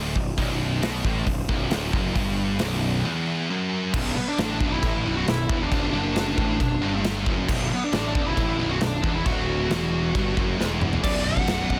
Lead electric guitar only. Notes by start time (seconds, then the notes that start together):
4.16 B3
4.29 D4
4.72 E4
5.17 F#4
5.30 E4
5.62 D4
5.74 D4
7.74 B3
7.84 D4
8.27 E4
8.71 F#4
8.83 D4
9.11 D4 E4
9.26 F#4
11.03 D5
11.24 F#5
11.70 F#5